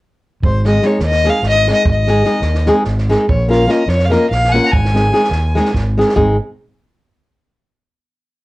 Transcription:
0.43 0.78 G#1 medium
0.43 0.64 C5 medium
0.43 kick medium
0.65 0.79 G#3 medium
0.65 0.80 C4 soft
0.65 0.80 D#4 soft
0.65 0.80 G#4 medium
0.65 0.87 D#5 medium
0.65 snare soft
0.82 0.97 G#3 medium
0.82 0.97 C4 medium
0.82 0.98 D#4 medium
0.82 1.02 C#5 medium
0.82 snare soft
0.86 0.99 G#4 medium
0.99 1.26 D#2 loud
0.99 snare soft
1.05 1.31 D#5 medium
1.11 snare soft
1.24 1.39 G#3 medium
1.24 1.40 C4 medium
1.24 1.40 D#4 medium
1.24 1.40 G#4 medium
1.24 snare soft
1.29 1.46 F5 medium
1.43 1.69 G#1 medium
1.43 snare soft
1.49 1.69 D#5 loud
1.55 snare soft
1.68 1.82 G#3 soft
1.68 1.82 C4 medium
1.68 1.82 D#4 medium
1.68 1.83 G#4 medium
1.68 snare soft
1.72 1.88 D#5 medium
1.86 2.21 G#1 medium
1.86 kick medium
1.91 2.67 D#5 medium
2.08 2.22 G#3 medium
2.08 2.22 C4 medium
2.08 2.23 D#4 medium
2.08 2.23 G#4 medium
2.08 snare soft
2.24 2.39 G#3 medium
2.24 2.40 C4 medium
2.24 2.40 D#4 medium
2.24 2.40 G#4 medium
2.24 snare soft
2.41 2.68 D#2 medium
2.41 snare soft
2.54 snare soft
2.66 2.82 G#3 medium
2.66 2.82 C4 medium
2.66 2.82 D#4 medium
2.66 2.83 G#4 medium
2.66 snare soft
2.84 3.12 G#1 medium
2.84 snare soft
2.98 snare soft
3.09 3.25 G#3 medium
3.09 3.25 C4 medium
3.09 3.25 D#4 medium
3.09 3.25 G#4 medium
3.09 snare soft
3.29 3.64 A#1 medium
3.29 3.49 C#5 medium
3.29 kick medium
3.48 3.64 A#3 medium
3.48 3.64 C#4 medium
3.48 3.65 F4 medium
3.48 3.65 A#4 medium
3.48 3.72 F5 medium
3.48 snare soft
3.67 3.82 A#3 medium
3.67 3.83 C#4 medium
3.67 3.83 F4 medium
3.67 3.83 A#4 medium
3.67 3.90 D#5 medium
3.67 snare soft
3.88 4.13 F2 loud
3.88 4.06 C#5 medium
3.88 snare soft
3.99 snare soft
4.05 4.13 F5 soft
4.10 4.25 A#3 medium
4.10 4.26 C#4 medium
4.10 4.26 F4 soft
4.10 4.26 A#4 medium
4.10 4.29 D#5 medium
4.10 snare soft
4.30 4.57 A#1 medium
4.30 4.50 F5 medium
4.30 snare soft
4.44 snare soft
4.49 4.65 F#5 medium
4.49 4.53 G#5 medium
4.54 4.69 A#3 medium
4.54 4.69 C#4 medium
4.54 4.69 F4 soft
4.54 4.69 A#4 medium
4.66 4.73 A#5 medium
4.72 5.08 G#1 medium
4.72 5.73 G#5 medium
4.72 kick medium
4.85 snare soft
4.94 5.08 G#3 medium
4.94 5.09 C4 medium
4.94 5.09 D#4 soft
4.94 5.09 G#4 medium
4.94 snare soft
5.12 5.26 G#3 medium
5.12 5.27 C4 medium
5.12 5.27 D#4 medium
5.12 5.27 G#4 medium
5.12 snare soft
5.24 snare soft
5.31 5.57 D#2 loud
5.31 snare soft
5.55 5.69 G#3 medium
5.55 5.70 C4 medium
5.55 5.70 D#4 medium
5.55 5.70 G#4 medium
5.55 snare soft
5.65 snare soft
5.74 6.00 G#1 medium
5.74 kick medium
5.74 snare soft
5.98 6.12 G#3 medium
5.98 6.12 C4 medium
5.98 6.12 D#4 soft
5.98 6.13 G#4 medium
5.98 snare soft
6.09 snare soft
6.16 6.36 G#1 medium
6.16 6.36 G#3 medium
6.16 6.36 C4 medium
6.16 6.36 D#4 medium
6.16 6.36 G#4 medium
6.16 kick medium

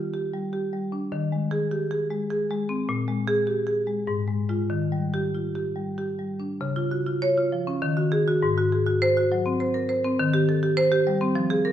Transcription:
0.00 1.09 D#3 medium
0.00 0.14 F4 soft
0.14 0.45 G4 soft
0.34 0.65 G3 soft
0.53 0.85 G4 medium
0.73 1.05 G3 soft
0.92 1.12 D4 soft
1.12 2.84 D#3 medium
1.32 1.64 G#3 medium
1.51 1.83 G#4 medium
1.71 1.91 G4 medium
1.91 2.22 G#4 medium
2.10 2.42 G#3 medium
2.31 2.61 G#4 medium
2.50 2.81 G#3 medium
2.69 2.88 C4 medium
2.89 4.03 A#2 medium
3.08 3.39 G#3 medium
3.28 3.59 G#4 medium
3.47 3.66 G4 medium
3.67 3.99 G#4 medium
3.87 4.07 G#3 medium
4.07 4.68 G#2 medium
4.28 4.48 G#3 medium
4.49 4.68 G#3 soft
4.49 4.68 F4 medium
4.70 6.56 D#3 medium
4.92 5.26 G3 medium
5.14 5.47 G4 medium
5.34 5.55 F4 soft
5.55 5.89 G4 soft
5.76 6.10 G3 soft
5.98 6.31 G4 soft
6.19 6.52 G3 soft
6.40 6.60 D4 soft
6.61 7.78 C#3 medium
6.76 7.00 F4 medium
6.91 7.06 F#4 medium
7.06 7.31 F4 medium
7.22 7.46 C#5 medium
7.38 7.61 F4 medium
7.52 7.76 F3 medium
7.67 7.82 C#4 medium
7.82 8.40 D#3 medium
7.97 8.21 F#4 medium
8.12 8.27 G#4 medium
8.28 8.42 F#4 medium
8.43 10.15 G#2 medium
8.58 8.81 F#4 medium
8.72 8.87 G#4 medium
8.86 9.11 F#4 medium
9.02 9.26 C5 medium
9.17 9.40 F#4 medium
9.32 9.55 F#3 medium
9.46 9.69 C4 medium
9.60 9.84 C5 medium
9.74 9.89 A#4 medium
9.89 10.13 C5 medium
10.04 10.19 C4 medium
10.19 11.32 D#3 medium
10.34 10.57 G4 medium
10.49 10.63 A4 medium
10.63 10.86 G4 medium
10.77 11.00 C5 loud
10.92 11.15 G4 medium
11.07 11.30 G3 medium
11.21 11.35 C4 medium
11.35 11.72 F3 medium
11.50 11.72 G#4 medium
11.65 11.72 A#4 medium

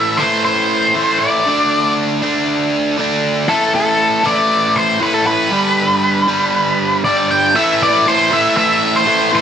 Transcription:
0.00 0.18 A2 medium
0.00 0.18 E3 medium
0.00 0.19 A3 loud
0.00 0.23 E5 medium
0.17 0.95 E3 medium
0.17 0.98 A3 medium
0.17 0.44 C5 medium
0.22 0.94 A2 medium
0.45 1.23 C5 medium
0.95 1.45 A2 medium
0.95 1.45 E3 medium
0.95 1.48 A3 medium
1.19 1.92 D5 medium
1.47 2.21 D3 medium
1.47 2.23 A3 medium
1.47 2.21 D4 loud
2.22 2.97 D3 medium
2.22 2.97 A3 medium
2.22 2.97 D4 medium
2.98 3.47 D3 medium
2.98 3.48 A3 medium
2.98 3.49 D4 medium
3.48 4.23 A2 medium
3.48 4.23 E3 medium
3.48 4.23 A3 medium
3.48 3.72 A4 medium
3.75 4.27 A4 medium
4.24 4.99 A2 medium
4.24 5.00 E3 medium
4.24 4.99 A3 medium
4.24 4.77 D5 medium
4.76 4.99 C5 medium
5.00 5.50 A2 medium
5.00 5.50 E3 medium
5.00 5.51 A3 medium
5.00 5.14 B4 medium
5.14 5.26 A4 medium
5.27 7.00 B4 medium
5.50 6.25 G2 medium
5.50 6.26 D3 medium
5.50 6.26 G3 medium
6.28 7.03 G2 medium
6.28 7.02 D3 medium
6.28 7.02 G3 medium
7.04 7.53 G2 medium
7.04 7.54 D3 medium
7.04 7.55 G3 medium
7.04 7.27 D5 medium
7.31 7.56 G5 medium
7.55 8.05 A2 medium
7.55 8.06 E3 loud
7.55 8.07 A3 loud
7.55 7.81 E5 medium
7.83 8.07 D5 medium
8.06 8.30 A2 medium
8.06 8.30 E3 medium
8.06 8.31 A3 medium
8.06 8.32 C5 medium
8.31 8.55 A2 medium
8.31 8.56 E3 loud
8.31 8.57 A3 medium
8.31 8.55 E5 loud
8.57 9.05 A2 loud
8.57 9.06 E3 loud
8.57 9.07 A3 loud
8.57 8.95 E5 medium
8.96 9.30 C5 medium
9.06 9.31 A2 medium
9.06 9.31 E3 medium
9.06 9.33 A3 medium
9.32 9.41 A2 medium
9.32 9.41 E3 medium
9.32 9.41 A3 loud
9.32 9.41 C5 medium

